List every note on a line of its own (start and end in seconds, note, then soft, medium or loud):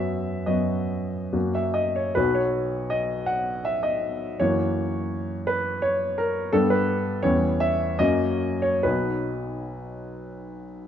0.00 0.45 F#2 soft
0.00 0.45 F#3 soft
0.00 0.45 B3 soft
0.00 0.45 F#4 soft
0.00 0.47 E5 medium
0.46 1.31 F#2 soft
0.46 1.31 F#3 soft
0.46 1.31 B3 soft
0.46 1.31 F#4 soft
0.46 1.33 D#5 soft
1.33 2.13 F#2 soft
1.33 2.13 F#3 soft
1.33 2.13 A#3 soft
1.33 2.13 F#4 soft
1.55 1.76 E5 medium
1.74 1.95 D#5 medium
1.96 2.16 C#5 soft
2.15 4.36 B1 soft
2.15 4.36 F#3 soft
2.15 4.36 B3 soft
2.15 4.36 F#4 soft
2.15 2.35 B4 medium
2.35 2.91 C#5 medium
2.90 3.28 D#5 medium
3.26 3.65 F#5 medium
3.65 3.84 E5 medium
3.83 4.39 D#5 medium
4.40 6.49 F#2 soft
4.40 6.49 E3 soft
4.40 6.49 A#3 soft
4.40 6.49 F#4 soft
4.40 5.47 C#5 medium
5.47 5.82 B4 medium
5.82 6.17 C#5 medium
6.18 6.53 A#4 medium
6.53 7.22 G2 soft
6.53 7.22 G3 soft
6.53 7.22 B3 soft
6.53 7.22 D4 soft
6.53 6.70 A4 medium
6.70 7.24 B4 medium
7.23 7.98 E2 soft
7.23 7.97 G3 soft
7.23 7.98 B3 soft
7.23 7.98 C#4 soft
7.23 7.60 C#5 medium
7.60 8.00 E5 medium
7.99 8.81 F#2 soft
7.99 8.81 F#3 soft
7.99 8.81 A#3 soft
7.99 8.81 C#4 soft
7.99 8.61 D#5 medium
8.62 8.83 C#5 medium
8.83 10.88 B1 soft
8.83 10.88 F#3 soft
8.83 10.88 B3 soft
8.83 10.88 D#4 soft
8.83 10.88 B4 medium